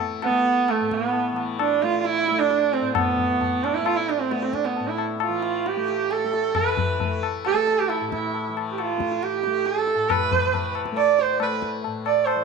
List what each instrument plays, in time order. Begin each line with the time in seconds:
Already playing: tanpura A2 E3 A3
0.22 sarangi B3, tabla na
0.30 tanpura A3
0.46 tabla te
0.68 sarangi A3, tabla na
0.81 tanpura A2
0.91 sarangi B3, tabla ke
1.13 tabla tin
1.32 tanpura E3, tabla na
1.59 sarangi D4, tabla na
1.82 tanpura A3, sarangi F4, tabla te
2.00 sarangi F4
2.05 sarangi E4, tabla te
2.28 tanpura A3, tabla te
2.39 sarangi D4
2.51 tabla te
2.73 sarangi C4, tabla te
2.81 tanpura A2
2.95 sarangi B3, tabla na, tabla ge
3.17 tabla ge
3.32 tanpura E3
3.41 tabla tin, tabla ge
3.64 sarangi D4, tabla na
3.74 sarangi E4
3.81 tanpura A3
3.85 sarangi F4, tabla na
3.96 sarangi E4
4.09 sarangi D4, tabla te
4.20 sarangi C4
4.31 tanpura A3, sarangi B3, tabla te
4.42 sarangi C4, tabla te
4.53 sarangi D4, tabla ke
4.65 sarangi B3, tabla te
4.77 tanpura A2, tabla tin
4.88 sarangi E4
4.98 tabla na
5.20 sarangi F4, tabla na
5.28 tanpura E3
5.42 tabla te
5.66 sarangi G4, tabla te
5.76 tanpura A3
5.88 tabla te
6.11 sarangi A4, tabla te
6.24 tanpura A3
6.34 tabla te
6.55 tanpura E3, sarangi B4, tabla na, tabla ge
6.77 tabla ge
7.00 tabla tin, tabla ge
7.04 tanpura A3
7.23 tabla na
7.45 sarangi A4, tabla na
7.54 tanpura A3
7.67 tabla te
7.79 sarangi G4
7.89 sarangi E4, tabla na
8.01 tanpura A2
8.11 sarangi E4, tabla ke
8.34 tabla tin
8.49 tanpura E3
8.57 tabla na
8.71 sarangi G4
8.78 sarangi F4, tabla na
8.97 tanpura A3, tabla ke
9.12 tabla te
9.23 sarangi G4, tabla te
9.44 tanpura A3, tabla te
9.66 sarangi A4, tabla te
9.87 tabla te
9.95 tanpura A2
10.10 sarangi B4, tabla na, tabla ge
10.32 tabla ge
10.42 tanpura E3
10.54 tabla tin, tabla ge
10.75 tabla na
10.85 tabla ke
10.92 tanpura A3
10.97 sarangi D5, tabla na
11.19 sarangi C5, tabla te
11.40 tanpura A3, sarangi B4, tabla na
11.62 tabla ke
11.84 tanpura A2, tabla tin
12.06 sarangi D5, tabla na
12.25 sarangi C5, tabla na
12.35 tanpura E3